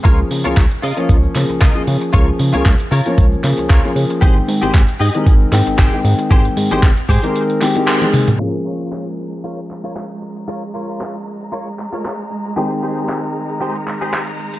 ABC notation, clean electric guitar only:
X:1
M:4/4
L:1/16
Q:"Swing 16ths" 1/4=115
K:Dblyd
V:1 name="Clean electric guitar"
[FBd] z2 [FBd] z2 [FBe]2 z4 [FBe]2 z2 | [FBd] z2 [FBd] z2 [FBd]2 z4 [FBd]2 z2 | [GAc] z2 [GAc] z2 [GAe]2 z4 [GAc]2 z2 | [GAc] z2 [GAc] z2 [GAc]2 z4 [GAc]2 z2 |
[FBd] z [FBd]3 z3 [FBd] z2 [FBd] z4 | [FBd] z [FBd]3 z3 [FBd] z2 [FBd] z4 | [GAc] z [GAc]3 z3 [GAc] z2 [GAc] z4 |]